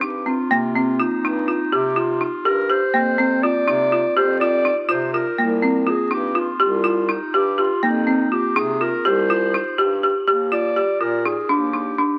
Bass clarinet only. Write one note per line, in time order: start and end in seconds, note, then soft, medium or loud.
0.01 0.38 G2 medium
0.50 1.05 C3 medium
1.23 1.60 G2 medium
1.73 2.28 C3 medium
2.46 2.83 G2 medium
2.94 3.50 F2 medium
3.67 4.04 C3 medium
4.16 4.72 F2 medium
4.90 5.27 C3 medium
5.39 5.94 C2 medium
6.11 6.49 G2 medium
6.61 7.16 C2 medium
7.34 7.71 G2 medium
7.83 8.38 F2 medium
8.56 8.93 C3 medium
9.05 9.60 C2 medium
9.78 10.15 G2 medium
10.27 10.83 D#2 medium
11.01 11.38 A#2 medium
11.49 12.05 D#2 medium